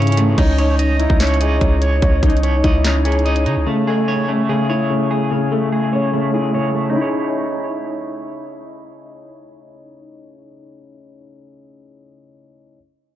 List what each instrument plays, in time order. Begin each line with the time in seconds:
Already playing: 808-style bass G#2, analog synth pad C#3 E3 E4, grand piano C#3 C#4 E4 A4, clean electric guitar C#4 G#4 A4 C#5
0.02 closed hi-hat
0.07 closed hi-hat
0.12 closed hi-hat
0.17 clean electric guitar A3, closed hi-hat
0.38 808-style bass C#2, grand piano C#4, clean electric guitar D#4, kick, closed hi-hat, crash
0.58 grand piano D#4, clean electric guitar C#5, closed hi-hat
0.79 clean electric guitar D#5, closed hi-hat
1.00 clean electric guitar D#4, grand piano E4, closed hi-hat
1.10 808-style bass C#2, kick
1.20 grand piano C#4, clean electric guitar C#5, snare, clap, closed hi-hat
1.27 closed hi-hat
1.34 closed hi-hat
1.41 grand piano G#4, clean electric guitar D#5, closed hi-hat
1.61 808-style bass C#2, grand piano C#4, kick, closed hi-hat
1.82 clean electric guitar C#5, closed hi-hat
2.02 808-style bass C#2, grand piano C#4, kick, closed hi-hat
2.23 808-style bass C2, clean electric guitar D#4, grand piano D#4, kick, closed hi-hat
2.30 closed hi-hat
2.37 closed hi-hat
2.43 clean electric guitar C#5, closed hi-hat
2.64 808-style bass C#2, grand piano E4, clean electric guitar D#5, kick, closed hi-hat
2.84 grand piano C#4, clean electric guitar D#4, snare, clap, closed hi-hat
3.05 grand piano G#4, clean electric guitar C#5, closed hi-hat
3.12 closed hi-hat
3.19 closed hi-hat
3.26 grand piano C#4, clean electric guitar D#5, closed hi-hat
3.36 closed hi-hat
3.46 808-style bass C#3, clean electric guitar D#4, closed hi-hat
3.56 808-style bass C#2
3.67 grand piano C#3, clean electric guitar A3
3.87 grand piano A3, clean electric guitar G#4
4.08 clean electric guitar C#5
4.28 clean electric guitar A3, grand piano C#4
4.49 grand piano C#3, clean electric guitar G#4
4.69 grand piano E4, clean electric guitar C#5
4.90 grand piano C#3
5.11 clean electric guitar G#4
5.31 grand piano C#3
5.52 clean electric guitar A3, grand piano A3
5.72 clean electric guitar G#4
5.93 grand piano C#4, clean electric guitar C#5
6.13 grand piano C#3, clean electric guitar A3
6.34 grand piano E4, clean electric guitar G#4
6.54 grand piano C#3, clean electric guitar C#5
6.75 clean electric guitar A3
6.89 grand piano C#4, clean electric guitar D#4
6.93 grand piano D#4 E4, clean electric guitar E4
7.01 grand piano G#4, clean electric guitar C#5